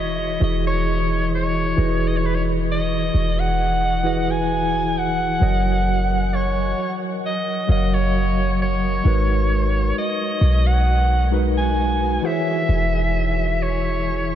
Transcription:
Already playing: E1
0.00 D#5
0.40 E1 E3 E4 F#4 G#4 D#5
0.67 C#5
1.35 C#5
1.76 E1 E3 D#4 F#4 G#4 B4 D#5
1.83 E4
2.07 D#5
2.17 C#5
2.26 B4
2.35 C#5
2.72 D#5
3.14 E1
3.39 F#5
4.03 E3 E4 F#4 G#4 B4 D#5
4.31 G#5
4.98 F#5
5.40 F#1 F#3 F#4 A#4 C#5 D#5
6.35 C#5
7.26 D#5
7.67 F#1 F#3 F#4 A#4 C#5 D#5 F5
7.77 F#5
7.94 C#5
8.62 C#5
9.04 G#1 G#3 D#4 F#4 A#4 B4
9.98 D#5
10.41 B1
10.67 F#5
11.31 G#3 D#4 F#4 A#4 B4
11.57 G#5
12.22 E3 E4 F#4 G#4 C5 E5
12.31 C#5
12.69 E1
13.62 C#5

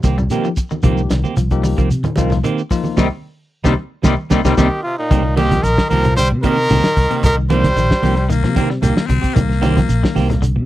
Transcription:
0.03 C2 D#3 A#3 C4 G4, muted clean electric guitar stroke, kick, snare, closed hi-hat, high conga, shekere
0.18 G3, muted clean electric guitar stroke, low conga, shekere
0.30 D#3 F3 A#3 C4 D#4 G4, snare, closed hi-hat, shekere
0.45 F3, shekere
0.57 muted clean electric guitar stroke, kick, closed hi-hat, shekere
0.71 D#3, muted clean electric guitar stroke, high conga, shekere
0.83 C2 D#3 F3 A#3 C4 D#4 G4, kick, closed hi-hat, low conga, shekere
0.98 shekere
1.10 C2 D#3, snare, closed hi-hat, high conga, shekere
1.24 A#3 C4 G4, high conga, shekere
1.36 C2 F3, muted clean electric guitar stroke, closed hi-hat, shekere
1.50 F3 A#3 D#4 G4, muted clean electric guitar stroke, kick, closed hi-hat, shekere
1.63 G3, muted clean electric guitar stroke, open hi-hat, high conga, shekere
1.77 C2 D#3 F3 A#3 C4 G4, kick, closed hi-hat, shekere
1.90 C3, muted clean electric guitar stroke, closed hi-hat, shekere
2.04 D#3, muted clean electric guitar stroke, closed hi-hat, high conga, low conga, shekere
2.16 C2 D#3 F3 A#3 C4 D#4 F4, kick, closed hi-hat, high conga, shekere
2.30 F3, muted clean electric guitar stroke, snare, closed hi-hat, low conga, shekere
2.44 D#3 A#3 C4 G4, closed hi-hat, shekere
2.58 shekere
2.70 F3 A#3 D#4 F4, muted clean electric guitar stroke, kick, open hi-hat, shekere
2.84 muted clean electric guitar stroke, high conga, shekere
2.97 C2 C3 D#3 G3 A#3 C4 D#4 G4, kick, snare, high conga, shekere
3.64 C2 C3 D#3 G3 A#3 C4 D#4 G4, kick, snare, high conga, shekere
4.03 C2 C3 D#3 G3 A#3 C4 D#4 G4, kick, snare, high conga, shekere
4.30 C2 C3 D#3 G3 A#3 C4 D#4 G4, kick, snare, high conga, shekere
4.45 C2 C3 D#3 G3 A#3 C4 D#4 G4, kick, snare, high conga, shekere
4.57 C2 C3 D#3 G3 A#3 C4 D#4 G4, kick, snare, high conga, shekere
4.84 C3 F4
4.98 A#2 D#4
5.11 C2 D#3 A#3 C4 G4, kick, snare, closed hi-hat, low conga, shekere
5.24 muted clean electric guitar stroke
5.36 D#3 A#3 C4 G4, closed hi-hat, high conga, shekere
5.51 F3, kick, closed hi-hat, high conga
5.63 A#1 D#3 A#4, muted clean electric guitar stroke, closed hi-hat, shekere
5.78 D#3, kick, snare
5.90 C2 D#3 F3 A#3 C4 G4 A#4, open hi-hat, high conga, shekere
6.04 C3, muted clean electric guitar stroke, closed hi-hat, low conga
6.16 D3 G3 C5, muted clean electric guitar stroke, closed hi-hat, shekere
6.31 C3, muted clean electric guitar stroke
6.43 D#3 A#3 C4 G4 A#4, kick, closed hi-hat, high conga, shekere
6.58 muted clean electric guitar stroke
6.69 C2 C3 D#3 A#3 C4 G4, closed hi-hat, high conga, low conga, shekere
6.84 D#3, muted clean electric guitar stroke, snare
6.96 C2, muted clean electric guitar stroke, kick, open hi-hat, shekere
7.11 C3 A#3 C4 G4, closed hi-hat
7.23 C2 D#3 A#4, kick, closed hi-hat, low conga, shekere
7.37 D#3, muted clean electric guitar stroke
7.50 D#3 F3 G3 A#3 C4 G4 C5, snare, closed hi-hat, high conga, shekere
7.64 kick, snare, closed hi-hat, high conga
7.76 A#1 D#3, muted clean electric guitar stroke, snare, closed hi-hat, shekere
7.91 kick, snare
8.02 C2 D#3 F3 G3 A#3 C4 G4, open hi-hat, high conga, shekere
8.16 muted clean electric guitar stroke, closed hi-hat
8.29 D#3 A#3, muted clean electric guitar stroke, closed hi-hat, shekere
8.43 C3 F3, muted clean electric guitar stroke, snare
8.55 D#3 A#3 C4 G4, kick, closed hi-hat, high conga, shekere
8.70 G3, muted clean electric guitar stroke, snare
8.82 C2 D#3 A#3 G4, muted clean electric guitar stroke, closed hi-hat, high conga, low conga, shekere
8.96 D#3, muted clean electric guitar stroke, muted fingered electric bass stroke, snare
9.07 C2 C3 C4, muted clean electric guitar stroke, kick, closed hi-hat, high conga, shekere
9.21 C4 G4, muted fingered electric bass stroke, kick, closed hi-hat
9.34 C2 D#3 A#3, kick, closed hi-hat, low conga, shekere
9.49 muted clean electric guitar stroke, snare
9.61 D#3 A#3 C4 G4, snare, closed hi-hat, high conga, shekere
9.77 F3, kick, snare, closed hi-hat, high conga
9.89 A#1, muted clean electric guitar stroke, closed hi-hat, shekere
10.03 D#3, kick, snare
10.15 C2 D#3 A#3 C4 G4, snare, open hi-hat, high conga, shekere
10.29 C3, muted clean electric guitar stroke, snare, closed hi-hat, low conga
10.42 D3, muted clean electric guitar stroke, closed hi-hat, shekere
10.56 C3, muted clean electric guitar stroke

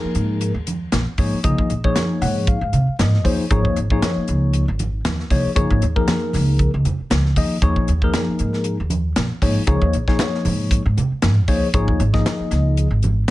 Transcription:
Already playing: F3 A#3 D#4 G#4 A#4
0.04 muted upright bass stroke
0.15 G#2, closed hi-hat
0.41 closed hi-hat, muted conga
0.54 D#2
0.67 closed hi-hat, muted conga, high conga
0.92 A#1, snare, closed hi-hat, high conga
1.18 G#2 F3 A#3 D#4 G#4 C#5, kick, open hi-hat
1.33 muted upright bass stroke
1.44 C#2 F3 A#3 D#4 G#4 D#5, kick, closed hi-hat, muted conga
1.58 D#2, kick
1.70 A#1, closed hi-hat
1.84 F3 A#3 D#4 G#4 C#5, kick
1.95 snare, closed hi-hat, high conga
2.21 G#2 F#5, open hi-hat, high conga, low conga
2.47 F5, kick, closed hi-hat, muted conga
2.61 G#2
2.73 C3, closed hi-hat, muted conga, low conga
2.88 muted upright bass stroke
2.99 G#2 D#5, snare, closed hi-hat, high conga
3.14 snare
3.24 D#2 F3 A#3 D#4 G#4 C5 C#5, kick, open hi-hat, muted conga
3.50 G#1 F3 A#3 D#4 G#4 C#5, kick, closed hi-hat
3.64 D#2, kick
3.76 G#1, closed hi-hat
3.90 F3 A#3 D#4 G#4 C#5, kick
4.02 snare, closed hi-hat, high conga
4.16 muted upright bass stroke
4.28 C#2, closed hi-hat
4.53 closed hi-hat, muted conga
4.68 G#1
4.79 closed hi-hat, muted conga, high conga
5.05 D#2, snare, closed hi-hat, high conga
5.19 snare
5.30 C2 F3 A#3 D#4 G#4 C#5, kick, open hi-hat
5.45 muted upright bass stroke
5.55 F#1 F3 A#3 D#4 G#4 C#5, kick, closed hi-hat
5.71 G#1, kick
5.82 D#2, closed hi-hat
5.96 F3 A#3 D#4 G#4 A#4, kick
6.08 snare, closed hi-hat, high conga
6.33 C#2, snare, open hi-hat, high conga, low conga
6.59 kick, closed hi-hat, muted conga
6.74 C#2
6.85 F2, closed hi-hat, muted conga, low conga
7.00 muted upright bass stroke
7.10 C#2, snare, closed hi-hat, high conga
7.25 snare
7.36 D#2 F3 A#3 D#4 G#4 D#5, kick, open hi-hat, muted conga
7.62 D#2 F3 A#3 D#4 G#4 C#5, kick, closed hi-hat, muted conga
7.76 A#1, kick
7.88 D#2, closed hi-hat
8.02 F3 A#3 D#4 G#4 A#4, kick
8.13 snare, closed hi-hat, high conga
8.28 muted upright bass stroke
8.39 G#2, closed hi-hat
8.53 snare
8.64 closed hi-hat, muted conga
8.80 D#2
8.90 closed hi-hat, muted conga, high conga
9.16 A#1, snare, closed hi-hat, high conga
9.42 G#2 F3 A#3 D#4 G#4 C#5, kick, open hi-hat
9.57 muted upright bass stroke
9.67 C#2 F3 A#3 D#4 G#4 C#5, kick, closed hi-hat
9.81 D#2, kick
9.93 A#1, closed hi-hat
10.08 F3 A#3 D#4 G#4 C#5, kick, snare
10.19 snare, closed hi-hat, high conga
10.34 snare
10.45 G#2, open hi-hat, high conga, low conga
10.71 kick, closed hi-hat, muted conga
10.86 G#2
10.97 C3, closed hi-hat, muted conga, low conga
11.12 muted upright bass stroke
11.22 G#2, snare, closed hi-hat, high conga
11.48 C#2 F3 A#3 D#4 G#4 C#5, kick, open hi-hat
11.74 G#1 F3 A#3 D#4 G#4 C#5, kick, closed hi-hat
11.88 D#2, kick
12.00 G#1, closed hi-hat
12.13 F3 A#3 D#4 G#4 D#5, kick, snare
12.26 snare, closed hi-hat, high conga
12.40 muted upright bass stroke
12.51 C#2, snare, closed hi-hat
12.77 closed hi-hat, muted conga
12.91 G#1
13.02 closed hi-hat, muted conga, high conga

